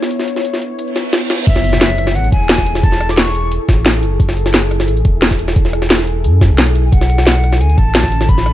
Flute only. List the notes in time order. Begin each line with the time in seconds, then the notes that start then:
1.47 E5
2.15 F#5
2.32 G#5
2.83 A5
3.10 D6
3.17 C#6
6.86 G#5
6.92 F#5
7.61 G#5
7.77 A5
8.29 B5